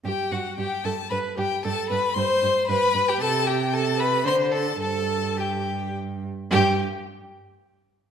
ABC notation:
X:1
M:3/4
L:1/16
Q:1/4=112
K:Clyd
V:1 name="Violin"
g2 f2 g2 a2 b2 g2 | a2 b2 c'4 b3 g | a2 g2 a2 b2 c'2 a2 | a4 g4 z4 |
g2 z8 z2 |]
V:2 name="Viola"
G2 F2 G2 A2 B2 G2 | A2 B2 c4 B3 G | A2 G2 A2 B2 c2 A2 | A4 G4 z4 |
G2 z8 z2 |]
V:3 name="Violin"
G2 F2 G2 A2 B2 G2 | A2 B2 c4 B3 G | A2 G2 A2 B2 c2 A2 | A4 G4 z4 |
G2 z8 z2 |]
V:4 name="Cello" clef=bass
G,,2 G,,2 G,,2 G,,2 G,,2 G,,2 | G,,2 G,,2 G,,2 G,,2 G,,2 G,,2 | C,8 D,4 | G,,8- G,,2 z2 |
G,,2 z8 z2 |]